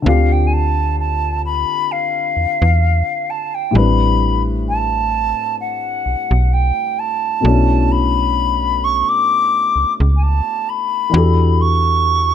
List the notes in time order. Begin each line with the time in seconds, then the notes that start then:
0.02 D2 D3 C4 D4
0.07 F4 G4 F5
0.32 G5
0.47 G#5
0.53 A5
0.99 A5
1.45 B5
1.92 F5
2.37 E2
2.62 E2
3.30 A5
3.54 G5
3.71 A2 G3 C4
3.75 A1 D4 B4 B5
4.68 A5
5.60 F#5
6.06 B1
6.31 B1
6.53 G5
6.99 A5
7.41 B2 A3 D4
7.45 B1 C#4 E4
7.91 B5
8.84 C#6
9.09 D6
9.76 C#2
10.00 C#2
10.16 G#5
10.22 A5
10.69 B5
11.10 E3 D4 F#4
11.14 E2 G4 A4
11.61 C#6